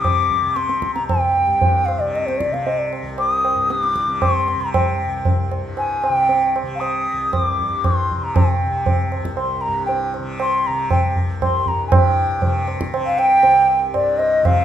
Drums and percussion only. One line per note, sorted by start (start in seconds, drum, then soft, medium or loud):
0.04 tabla na medium
0.04 tabla ge medium
0.31 tabla ge soft
0.56 tabla te medium
0.69 tabla te medium
0.82 tabla ke medium
0.96 tabla te medium
1.09 tabla na medium
1.09 tabla ge medium
1.61 tabla tin medium
1.61 tabla ge medium
1.88 tabla na medium
2.15 tabla te medium
2.28 tabla te medium
2.40 tabla ke medium
2.54 tabla te medium
2.67 tabla tin medium
2.93 tabla na medium
3.18 tabla na medium
3.45 tabla na medium
3.70 tabla te medium
3.83 tabla te medium
3.96 tabla ke soft
4.10 tabla te soft
4.22 tabla na medium
4.22 tabla ge medium
4.48 tabla te medium
4.74 tabla na medium
4.74 tabla ge medium
5.25 tabla tin medium
5.25 tabla ge medium
5.52 tabla na medium
5.77 tabla na medium
6.04 tabla na medium
6.29 tabla tin medium
6.56 tabla na medium
6.81 tabla na medium
7.33 tabla na medium
7.33 tabla ge medium
7.59 tabla ge soft
7.84 tabla na medium
7.84 tabla ge medium
8.11 tabla ge medium
8.36 tabla na loud
8.36 tabla ge loud
8.86 tabla tin medium
8.86 tabla ge medium
9.12 tabla na medium
9.25 tabla ke medium
9.37 tabla na medium
9.89 tabla tin medium
10.14 tabla na medium
10.40 tabla na medium
10.90 tabla na medium
10.90 tabla ge medium
11.16 tabla ge soft
11.42 tabla na medium
11.42 tabla ge medium
11.66 tabla ge soft
11.92 tabla na loud
11.92 tabla ge loud
12.42 tabla tin medium
12.42 tabla ge medium
12.68 tabla na medium
12.81 tabla ke medium
12.94 tabla na medium
13.19 tabla na medium
13.43 tabla tin medium
13.94 tabla na medium
14.20 tabla na medium
14.45 tabla na medium
14.45 tabla ge medium